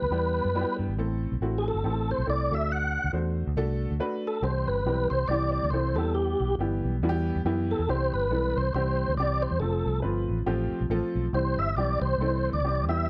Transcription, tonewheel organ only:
Already playing: B4
1.58 G#4
1.68 A4
2.11 C5
2.30 D5
2.54 E5
2.72 F#5
4.27 A4
4.44 C5
4.68 B4
5.10 C5
5.28 D5
5.52 D5
5.70 C5
5.96 A4
6.15 G4
7.71 A4
7.90 C5
8.14 B4
8.57 C5
8.74 C5
9.17 D5
9.42 C5
9.60 A4
11.34 C5
11.59 E5
11.77 D5
12.02 C5
12.53 D5
12.89 E5

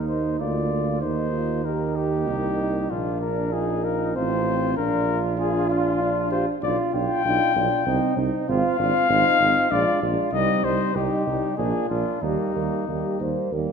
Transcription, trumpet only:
0.09 C5
0.40 D5
1.01 C5
1.65 A#4
1.96 G4
2.91 F4
3.22 A#4
3.53 G#4
3.84 A#4
4.16 C5
4.77 A#4
5.39 G#4
5.69 F4
6.31 C5
6.63 D5
6.95 G5
8.48 F5
9.72 D5
10.33 D#5
10.64 C5
10.96 G4
11.57 G#4
11.89 F4
12.22 D#4

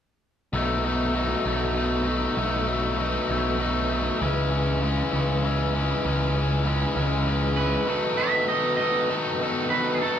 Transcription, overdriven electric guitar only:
0.53 B2 F#3 A3 D#4
0.83 F#3 A3 D#4
1.14 B2 F#3 A3 D#4
1.44 F#3 A3 D#4
1.74 B2 F#3 A3 D#4
2.05 F#3 A3 D#4
2.36 B2 F#3 A3 D#4
2.66 F#3 A3 D#4
2.97 B2 F#3 A3 D#4
3.28 F#3 A3 D#4
3.58 B2 F#3 A3 D#4
3.89 F#3 A3 D#4
4.20 C#3 E3 G#3 C#4
4.51 E3 G#3 C#4
4.81 C#3 E3 G#3 C#4
5.12 E3 G#3 C#4
5.43 C#3 E3 G#3 C#4
5.74 E3 G#3 C#4
6.04 C#3 E3 G#3 C#4
6.35 E3 G#3 C#4
6.65 C#3 E3 G#3 C#4
6.95 E3 G#3 C#4
7.26 C#3 E3 G#3 C#4
7.57 E3 G#3 C#4
7.87 B2 D#3 F#3 B3 D#4 A4
8.17 B2 D#3 F#3 B3 D#4 A4
8.48 B2 D#3 F#3 B3 D#4 A4
8.79 B2 D#3 F#3 B3 D#4 A4
9.09 B2 D#3 F#3 B3 D#4 A4
9.40 B2 D#3 F#3 B3 D#4 A4
9.70 B2 D#3 F#3 B3 D#4 A4
10.01 B2 D#3 F#3 B3 D#4 A4

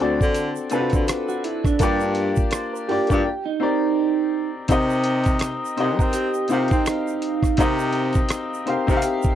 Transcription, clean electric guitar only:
0.72 B4
1.08 A4
1.29 F#4
1.44 E4
1.65 D4
2.52 C5
2.73 A#4
2.89 G4
3.10 F4
3.25 G4
3.45 D#4
5.78 C5
5.99 A#4
6.14 G4
6.50 F4
6.71 D#4
8.68 C5
8.88 A#4
9.04 G4

